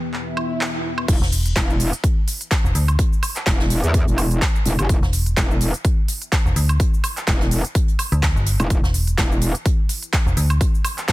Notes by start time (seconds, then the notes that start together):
Already playing: E3 B3 B4 G5
0.13 clap, swell
0.37 high woodblock
0.61 clap
0.98 high woodblock
1.08 E1 E4 B4 E5, kick, closed hi-hat, crash, shaker
1.22 E1, snare, shaker
1.32 closed hi-hat, open hi-hat, shaker
1.46 closed hi-hat, shaker
1.55 E1, kick, snare, clap, closed hi-hat, shaker
1.70 shaker
1.80 closed hi-hat, open hi-hat, shaker
1.93 closed hi-hat, shaker
2.04 kick, closed hi-hat, shaker
2.28 closed hi-hat, open hi-hat, shaker
2.41 closed hi-hat, shaker
2.51 kick, snare, clap, closed hi-hat, shaker
2.64 E1, shaker
2.75 D2, closed hi-hat, open hi-hat, shaker
2.88 closed hi-hat, high woodblock, shaker
2.99 kick, closed hi-hat, shaker
3.13 shaker
3.23 closed hi-hat, open hi-hat, high woodblock, shaker
3.36 clap, closed hi-hat, shaker
3.46 E1, kick, snare, clap, closed hi-hat, shaker
3.60 snare, shaker
3.70 closed hi-hat, open hi-hat, shaker
3.84 E2, closed hi-hat, shaker
3.94 kick, closed hi-hat, shaker
4.07 E1, closed hi-hat, shaker
4.18 closed hi-hat, open hi-hat, high woodblock, shaker
4.31 closed hi-hat, shaker
4.42 kick, snare, clap, closed hi-hat, shaker
4.56 shaker
4.66 E1, closed hi-hat, open hi-hat, shaker
4.79 G1, closed hi-hat, high woodblock, shaker
4.89 E1, kick, closed hi-hat, shaker
5.03 E1, snare, shaker
5.12 closed hi-hat, open hi-hat, shaker
5.26 closed hi-hat, shaker
5.37 E1, kick, snare, clap, closed hi-hat, shaker
5.51 shaker
5.61 closed hi-hat, open hi-hat, shaker
5.74 closed hi-hat, shaker
5.85 kick, closed hi-hat, shaker
6.08 closed hi-hat, open hi-hat, shaker
6.22 closed hi-hat, shaker
6.32 kick, snare, clap, closed hi-hat, shaker
6.45 E1, shaker
6.56 D2, closed hi-hat, open hi-hat, shaker
6.69 closed hi-hat, high woodblock, shaker
6.80 kick, closed hi-hat, shaker
6.94 shaker
7.04 closed hi-hat, open hi-hat, high woodblock, shaker
7.17 clap, closed hi-hat, shaker
7.27 E1, kick, snare, clap, closed hi-hat, shaker
7.41 snare, shaker
7.51 closed hi-hat, open hi-hat, shaker
7.65 closed hi-hat, shaker
7.75 kick, closed hi-hat, shaker
7.88 closed hi-hat, shaker
7.99 closed hi-hat, open hi-hat, high woodblock, shaker
8.12 D2, closed hi-hat, shaker
8.23 kick, snare, clap, closed hi-hat, shaker
8.36 G1, shaker
8.46 closed hi-hat, open hi-hat, shaker
8.60 E1, closed hi-hat, high woodblock, shaker
8.70 E1 G5, kick, closed hi-hat, shaker
8.83 E1, snare, shaker
8.94 closed hi-hat, open hi-hat, shaker
9.07 closed hi-hat, shaker
9.18 E1, kick, snare, clap, closed hi-hat, shaker
9.32 shaker
9.41 closed hi-hat, open hi-hat, shaker
9.55 closed hi-hat, shaker
9.66 kick, closed hi-hat, shaker
9.89 closed hi-hat, open hi-hat, shaker
10.02 closed hi-hat, shaker
10.13 kick, snare, clap, closed hi-hat, shaker
10.26 E1, shaker
10.37 D2, closed hi-hat, open hi-hat, shaker
10.50 closed hi-hat, high woodblock, shaker
10.61 kick, closed hi-hat, shaker
10.75 shaker
10.85 closed hi-hat, open hi-hat, high woodblock, shaker
10.98 clap, closed hi-hat, shaker
11.08 E1, kick, snare, clap, closed hi-hat, shaker